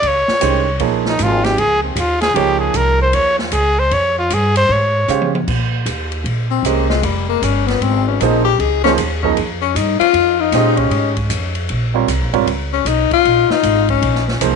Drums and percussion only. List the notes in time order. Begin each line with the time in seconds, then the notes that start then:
0.03 ride
0.28 snare
0.41 hi-hat pedal, ride
0.80 ride
1.06 snare
1.19 hi-hat pedal, ride
1.44 snare, ride
1.58 ride
1.96 hi-hat pedal, ride
2.21 snare, ride
2.36 ride
2.74 hi-hat pedal, ride
3.13 ride
3.39 snare
3.52 hi-hat pedal, ride
3.91 ride
4.30 hi-hat pedal, ride
4.56 ride
5.08 hi-hat pedal
5.22 high tom
5.35 high tom
5.48 kick, crash
5.86 hi-hat pedal, ride
6.12 ride
6.26 ride
6.65 hi-hat pedal, ride
6.90 snare
7.03 ride
7.43 hi-hat pedal, ride
7.68 snare, ride
7.82 ride
8.21 hi-hat pedal, ride
8.60 ride
8.85 snare
8.98 hi-hat pedal, ride
9.23 kick
9.37 ride
9.76 hi-hat pedal, ride
10.01 ride
10.14 ride
10.52 snare, hi-hat pedal, ride
10.77 kick, ride
10.91 ride
11.17 kick, ride
11.30 hi-hat pedal, ride
11.55 ride
11.69 ride
12.08 hi-hat pedal, ride
12.34 ride
12.47 ride
12.86 hi-hat pedal, ride
13.11 kick, ride
13.25 ride
13.50 snare
13.63 hi-hat pedal, ride
13.89 kick, ride
14.02 ride
14.15 snare
14.28 snare
14.41 hi-hat pedal, ride